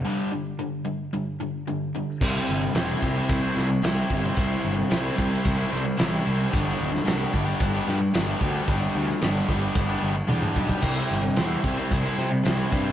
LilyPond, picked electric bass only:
\new Staff \with { instrumentName = "Picked electric bass" } { \clef bass \time 4/4 \key c \lydian \tempo 4 = 111 r1 | c,8 g,,8 e,,8 c,8 c,8 c,8 c,8 g,,8 | c,8 g,,8 c,8 c,8 c,8 c,8 a,,8 c,8 | g,,8 d,,8 c,8 g,,8 g,,8 g,8 g,,8 d,8 |
g,,8 d,8 g,,8 g,,8 g,,8 g,,8 e,8 b,,8 | c,8 g,,8 e,8 c,8 c,8 c8 c,8 g,8 | }